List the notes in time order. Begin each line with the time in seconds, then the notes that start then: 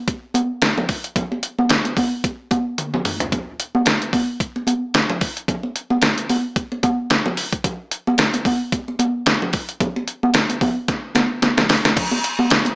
0.08 kick, closed hi-hat, muted conga
0.34 closed hi-hat, high conga
0.62 snare, closed hi-hat, muted conga
0.78 muted conga, low conga
0.89 kick, open hi-hat
1.04 closed hi-hat
1.16 kick, closed hi-hat, muted conga, low conga
1.32 muted conga
1.43 closed hi-hat
1.59 high conga
1.69 snare, closed hi-hat, muted conga
1.85 closed hi-hat, muted conga
1.97 kick, open hi-hat, high conga
2.24 kick, closed hi-hat, muted conga
2.51 kick, closed hi-hat, high conga
2.78 closed hi-hat, high tom
2.94 muted conga, low conga
3.05 mid tom, open hi-hat
3.20 closed hi-hat, floor tom
3.32 kick, closed hi-hat, muted conga, low conga
3.60 closed hi-hat
3.75 high conga
3.85 snare, closed hi-hat, muted conga
4.02 closed hi-hat
4.13 kick, open hi-hat, high conga
4.40 kick, closed hi-hat
4.56 muted conga
4.67 closed hi-hat, high conga
4.94 snare, closed hi-hat
5.10 low conga
5.21 kick, open hi-hat
5.37 closed hi-hat
5.48 kick, closed hi-hat, muted conga, low conga
5.63 muted conga
5.76 closed hi-hat
5.90 high conga
6.02 snare, closed hi-hat
6.18 closed hi-hat
6.29 open hi-hat, high conga
6.56 kick, closed hi-hat, muted conga
6.72 muted conga
6.83 kick, closed hi-hat, high conga
7.10 snare, closed hi-hat, muted conga
7.26 muted conga, low conga
7.37 open hi-hat
7.53 kick, closed hi-hat
7.64 kick, closed hi-hat, low conga
7.91 closed hi-hat
8.07 high conga
8.18 snare, closed hi-hat, muted conga
8.33 closed hi-hat, muted conga
8.45 kick, open hi-hat, high conga
8.72 kick, closed hi-hat, muted conga
8.88 muted conga
8.99 closed hi-hat, high conga
9.26 snare, closed hi-hat, muted conga
9.42 low conga
9.53 kick, open hi-hat
9.69 closed hi-hat
9.80 kick, closed hi-hat, muted conga, low conga
9.96 muted conga
10.08 closed hi-hat
10.23 high conga
10.34 snare, closed hi-hat, muted conga
10.49 closed hi-hat, muted conga
10.61 kick, open hi-hat, high conga, low conga
10.88 kick, snare, closed hi-hat, muted conga
11.15 snare, closed hi-hat, high conga
11.42 snare, closed hi-hat, high conga
11.57 snare, muted conga, low conga
11.69 snare, open hi-hat
11.85 snare, closed hi-hat
11.96 kick, closed hi-hat, crash, low conga
12.11 muted conga
12.24 closed hi-hat
12.39 high conga
12.50 snare, closed hi-hat
12.65 closed hi-hat, muted conga